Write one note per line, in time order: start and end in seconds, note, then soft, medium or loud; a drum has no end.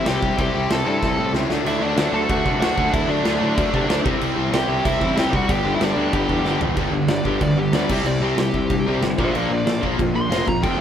0.05 0.17 C2 loud
0.05 0.21 C3 medium
0.05 0.21 G3 loud
0.05 0.20 C4 medium
0.05 0.38 E4 medium
0.05 0.37 G4 medium
0.05 0.39 G5 medium
0.05 snare loud
0.05 crash medium
0.21 0.33 C2 medium
0.21 0.35 C3 medium
0.21 0.36 G3 medium
0.21 0.37 C4 medium
0.21 kick loud
0.36 0.49 C2 medium
0.36 0.53 C3 medium
0.36 0.52 G3 loud
0.36 0.51 C4 loud
0.36 kick loud
0.36 crash medium
0.40 0.84 E4 loud
0.40 0.69 G4 medium
0.40 0.68 G5 medium
0.52 0.65 C2 loud
0.52 0.68 C3 medium
0.52 0.68 G3 loud
0.52 0.69 C4 loud
0.69 0.81 C2 medium
0.69 0.85 C3 medium
0.69 0.84 G3 loud
0.69 0.84 C4 loud
0.69 0.86 A4 medium
0.69 0.86 A5 loud
0.69 snare loud
0.69 crash medium
0.85 0.97 G2 medium
0.85 0.99 C3 medium
0.85 1.00 G3 medium
0.85 1.01 C4 medium
0.85 1.32 E4 loud
0.85 1.31 A4 medium
0.85 1.31 A5 loud
1.00 1.13 C2 medium
1.00 1.18 C3 loud
1.00 1.17 G3 medium
1.00 1.16 C4 medium
1.00 kick loud
1.00 snare medium
1.17 1.29 A2 loud
1.17 1.32 C3 medium
1.17 1.33 G3 loud
1.17 1.33 C4 loud
1.33 1.44 C#2 loud
1.33 1.48 C3 medium
1.33 1.49 G3 medium
1.33 1.49 C4 medium
1.33 1.50 E4 medium
1.33 snare medium
1.49 1.60 D2 medium
1.49 1.65 D3 medium
1.49 1.98 F#3 loud
1.49 1.65 A3 medium
1.49 1.64 D4 medium
1.49 snare loud
1.64 1.76 D2 loud
1.64 1.79 D3 medium
1.64 1.81 A3 medium
1.64 1.80 D4 loud
1.64 1.83 E5 loud
1.64 crash medium
1.69 1.82 E4 medium
1.80 1.92 D2 medium
1.80 1.98 D3 medium
1.80 1.97 A3 loud
1.80 1.96 D4 loud
1.80 2.14 D5 loud
1.84 2.12 D4 medium
1.97 2.08 D2 medium
1.97 2.11 D3 medium
1.97 2.45 F#3 medium
1.97 2.12 A3 medium
1.97 2.13 D4 loud
1.97 snare loud
1.97 crash medium
2.01 2.43 D4 medium
2.12 2.24 D2 medium
2.12 2.29 D3 medium
2.12 2.28 A3 medium
2.12 2.28 D4 medium
2.12 2.29 A4 medium
2.12 2.30 A5 loud
2.29 2.41 D2 medium
2.29 2.43 D3 medium
2.29 2.44 A3 medium
2.29 2.44 D4 loud
2.29 2.59 F#4 medium
2.29 2.60 F#5 loud
2.29 kick loud
2.29 crash medium
2.44 2.56 C2 medium
2.44 2.60 D3 loud
2.44 2.75 F#3 medium
2.44 2.60 A3 loud
2.44 2.58 D4 loud
2.44 kick medium
2.48 2.74 D3 medium
2.60 2.71 D2 loud
2.60 2.74 D3 medium
2.60 2.74 A3 medium
2.60 2.75 D4 loud
2.60 2.91 F#4 medium
2.60 2.93 F#5 loud
2.60 snare loud
2.60 crash medium
2.76 2.88 D2 loud
2.76 2.91 D3 medium
2.76 3.24 F#3 loud
2.76 2.90 A3 medium
2.76 2.90 D4 medium
2.76 kick loud
2.91 3.04 D2 loud
2.91 3.06 D3 medium
2.91 3.07 A3 loud
2.91 3.07 D4 loud
2.91 3.08 E4 medium
2.91 3.10 E5 loud
2.91 kick loud
2.91 crash medium
2.95 3.08 D4 loud
3.07 3.19 D2 medium
3.07 3.23 D3 medium
3.07 3.23 A3 loud
3.07 3.22 D4 loud
3.07 4.01 D4 medium
3.07 4.01 D5 medium
3.23 3.36 D2 loud
3.23 3.37 D3 medium
3.23 3.73 F#3 medium
3.23 3.38 A3 medium
3.23 3.39 D4 loud
3.23 snare loud
3.23 crash medium
3.27 3.72 D4 medium
3.38 3.52 A2 medium
3.38 3.55 D3 medium
3.38 3.55 A3 medium
3.38 3.54 D4 medium
3.43 3.57 D3 medium
3.55 3.68 D2 loud
3.55 3.68 D3 medium
3.55 3.69 A3 loud
3.55 3.70 D4 loud
3.55 kick loud
3.55 crash medium
3.70 3.86 D3 loud
3.70 3.86 A3 loud
3.70 3.85 D4 loud
3.74 3.84 C3 loud
3.74 3.89 D3 loud
3.74 4.04 D3 medium
3.74 4.05 F#3 medium
3.74 4.05 A3 medium
3.74 3.90 A3 medium
3.74 kick medium
3.86 3.99 D2 loud
3.86 4.03 D3 medium
3.86 4.03 A3 medium
3.86 4.03 D4 loud
3.86 snare loud
3.86 crash medium
3.91 4.05 A3 medium
3.91 4.05 D4 medium
4.03 4.16 C2 loud
4.03 4.19 C3 medium
4.03 4.19 G3 medium
4.03 4.18 C4 loud
4.03 kick loud
4.08 4.53 E4 loud
4.19 4.32 C2 loud
4.19 4.34 C3 medium
4.19 4.35 G3 loud
4.19 4.36 C4 loud
4.19 crash medium
4.35 4.48 C2 medium
4.35 4.51 C3 medium
4.35 4.51 G3 medium
4.35 4.50 C4 loud
4.51 4.63 C2 loud
4.51 4.67 C3 medium
4.51 4.68 G3 loud
4.51 4.67 C4 loud
4.51 4.83 G4 loud
4.51 snare loud
4.51 crash medium
4.55 4.98 E4 medium
4.55 4.84 G5 loud
4.68 4.79 C2 medium
4.68 4.83 C3 medium
4.68 4.84 G3 medium
4.68 4.82 C4 medium
4.84 4.96 C2 medium
4.84 4.98 C3 medium
4.84 5.00 G3 medium
4.84 4.99 C4 medium
4.84 5.15 E4 medium
4.84 5.18 E5 loud
4.84 kick loud
4.84 crash medium
4.99 5.12 A1 medium
4.99 5.15 C3 loud
4.99 5.16 G3 loud
4.99 5.14 C4 loud
4.99 5.31 E4 loud
4.99 kick medium
5.04 5.33 C3 medium
5.15 5.27 C2 loud
5.15 5.29 C3 medium
5.15 5.31 G3 medium
5.15 5.30 C4 loud
5.15 5.32 G4 medium
5.15 snare loud
5.15 crash medium
5.19 5.36 G5 loud
5.30 5.44 C2 loud
5.30 5.47 C3 medium
5.30 5.48 G3 medium
5.30 5.47 C4 medium
5.30 kick loud
5.34 5.49 C3 medium
5.34 5.49 C4 medium
5.34 5.48 F#4 medium
5.34 5.51 F#5 medium
5.47 5.60 G1 medium
5.47 5.64 G2 medium
5.47 5.63 D3 loud
5.47 5.62 G3 loud
5.47 5.95 B3 loud
5.47 5.93 D4 medium
5.47 5.72 G4 medium
5.47 kick loud
5.47 crash medium
5.53 5.73 G5 loud
5.63 5.75 G1 loud
5.63 5.78 G2 medium
5.63 5.79 D3 loud
5.63 5.79 G3 loud
5.74 5.81 E4 medium
5.74 5.83 E5 medium
5.79 5.91 G1 medium
5.79 5.96 G2 medium
5.79 5.95 D3 loud
5.79 5.95 G3 loud
5.79 6.12 D4 medium
5.79 snare loud
5.79 crash medium
5.85 6.13 D5 medium
5.94 6.08 D2 medium
5.94 6.11 G2 medium
5.94 6.12 D3 medium
5.94 6.12 G3 medium
5.94 6.44 B3 medium
5.94 6.43 D4 medium
6.12 6.24 G1 loud
6.12 6.29 G2 loud
6.12 6.28 D3 loud
6.12 6.28 G3 loud
6.12 6.58 G4 medium
6.12 6.59 G5 medium
6.12 kick loud
6.12 crash medium
6.29 6.40 E2 medium
6.29 6.44 G2 medium
6.29 6.44 D3 loud
6.29 6.45 G3 loud
6.29 kick medium
6.45 6.56 G1 loud
6.45 6.60 G2 medium
6.45 6.60 D3 medium
6.45 6.59 G3 medium
6.45 6.77 B3 medium
6.45 6.77 D4 medium
6.45 snare medium
6.60 6.71 E1 medium
6.60 6.76 G2 medium
6.60 6.76 D3 medium
6.60 6.76 G3 medium
6.60 floor tom loud
6.76 6.88 G1 medium
6.76 6.92 G2 medium
6.76 6.92 D3 medium
6.76 6.93 G3 loud
6.76 7.89 B3 medium
6.76 7.90 D4 medium
6.76 kick loud
6.76 crash medium
6.92 7.03 G1 medium
6.92 7.08 G2 medium
6.92 7.08 D3 loud
7.07 7.19 G1 medium
7.07 7.23 G2 medium
7.07 7.24 D3 medium
7.07 7.25 D5 loud
7.07 snare loud
7.07 crash medium
7.25 7.36 G1 medium
7.25 7.39 G2 medium
7.25 7.39 D3 medium
7.25 7.41 G3 medium
7.25 7.42 G4 medium
7.25 kick medium
7.40 7.52 D2 medium
7.40 7.55 G2 medium
7.40 7.56 D3 medium
7.40 7.58 D5 loud
7.40 kick loud
7.40 crash medium
7.55 7.67 G1 medium
7.55 7.71 G2 medium
7.55 7.71 D3 medium
7.55 7.74 G4 medium
7.72 7.84 D2 medium
7.72 7.88 G2 medium
7.72 7.88 D3 medium
7.72 7.88 G3 loud
7.72 7.90 D5 medium
7.72 snare loud
7.72 crash medium
7.89 8.01 C2 medium
7.89 8.04 C3 medium
7.89 8.04 G3 medium
7.89 8.05 C4 medium
7.89 9.19 E4 medium
7.89 8.06 G4 medium
7.89 kick loud
7.89 crash loud
8.03 8.15 C2 medium
8.03 8.20 C3 medium
8.03 8.20 G3 medium
8.03 8.22 D5 loud
8.03 crash medium
8.20 8.32 C2 loud
8.20 8.35 C3 medium
8.20 8.36 G3 loud
8.20 8.37 C4 loud
8.20 8.38 G4 medium
8.36 8.48 C2 medium
8.36 8.51 C3 medium
8.36 8.52 G3 medium
8.36 9.02 G4 medium
8.36 snare loud
8.36 crash medium
8.53 8.65 C2 medium
8.53 8.68 C3 medium
8.53 8.68 G3 medium
8.53 kick medium
8.70 8.81 G2 medium
8.70 8.85 C3 medium
8.70 8.85 G3 medium
8.70 kick loud
8.70 crash medium
8.85 8.97 C2 medium
8.85 9.01 C3 medium
8.85 9.02 G3 medium
8.85 9.02 C4 loud
9.01 9.13 G1 loud
9.01 9.17 C3 medium
9.01 9.17 G3 medium
9.01 snare loud
9.01 crash medium
9.18 9.29 A#1 loud
9.18 9.32 A#2 medium
9.18 9.33 F3 medium
9.18 9.34 A#3 medium
9.18 10.48 D4 medium
9.18 9.36 C5 medium
9.18 9.36 E5 medium
9.18 kick loud
9.33 9.45 A#1 medium
9.33 9.48 A#2 medium
9.33 9.48 F3 medium
9.33 9.50 A#3 medium
9.33 9.51 A#4 medium
9.33 9.51 D5 medium
9.33 crash medium
9.49 9.61 A#1 medium
9.49 9.65 A#2 medium
9.49 9.64 F3 medium
9.49 9.83 D5 loud
9.66 9.77 A#1 medium
9.66 9.81 A#2 medium
9.66 9.81 F3 medium
9.66 snare loud
9.66 crash medium
9.82 9.94 A#1 medium
9.82 9.97 A#2 medium
9.82 9.97 F3 medium
9.82 9.98 A#3 loud
9.82 kick medium
9.98 10.10 F2 medium
9.98 10.13 A#2 medium
9.98 10.13 F3 medium
9.98 kick loud
9.98 crash medium
10.14 10.26 A#1 medium
10.14 10.29 A#2 medium
10.14 10.29 F3 medium
10.14 10.47 C6 loud
10.30 10.41 F1 loud
10.30 10.45 A#2 medium
10.30 10.46 F3 medium
10.30 10.46 A#3 loud
10.30 snare loud
10.30 crash medium
10.46 10.65 F2 medium
10.46 10.61 A#2 medium
10.46 10.62 F3 medium
10.46 10.64 A#5 medium
10.46 kick loud
10.62 10.75 F1 loud
10.62 10.77 F2 medium
10.62 10.77 C3 loud
10.62 10.78 F3 loud
10.62 10.81 A3 medium
10.62 10.81 C4 loud
10.62 10.79 G5 medium
10.62 kick loud
10.62 crash medium
10.77 10.81 F1 loud